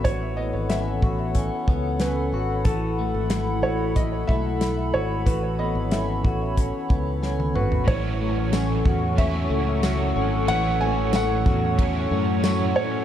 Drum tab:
RD |----------------|----------------|----------------|x---x---x---x---|
HH |x---x---x---x---|x---x---x---x---|x---x---x-------|----------------|
TB |----------------|----------------|----------------|----x-------x---|
SD |----o-------o---|----o-------o---|----o-------o---|----o-------o---|
T1 |----------------|----------------|-------------o--|----------------|
T2 |----------------|----------------|--------------o-|----------------|
FT |----------------|----------------|---------------o|----------------|
BD |o-----o-o-o-----|o-------o-o-----|o-----o-o-o-----|o-----o-o-------|

RD |x---x---x---x---|
HH |----------------|
TB |----x-------x---|
SD |----o-------o---|
T1 |----------------|
T2 |----------------|
FT |----------------|
BD |------o-o-------|